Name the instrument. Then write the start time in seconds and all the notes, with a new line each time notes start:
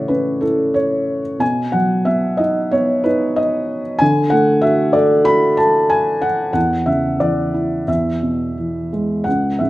felt piano
Already playing: A2 C#3 E3 E4 C#5 D5 E5 F#5
0.08 C#4 B4
0.41 E4 A4
0.74 C#5
1.39 B2 G#5
1.72 F#3 F#5
2.05 B3 E5
2.37 D#4 D#5
2.71 B3 C#5
3.04 D#4 B4
3.36 D#5
3.99 D3 G#5
4.30 A3 F#5
4.61 F#4 E5
4.93 A4 D5
5.24 F#4 B5
5.57 A4 A5
5.90 G#5
6.22 F#5
6.53 E2 F#5
6.86 C#3 E5
7.20 E3 D5
7.54 E4
7.88 E2 E5
8.22 B2
8.58 E3
8.93 G#3
9.24 C#2 F#5
9.59 G#2 E5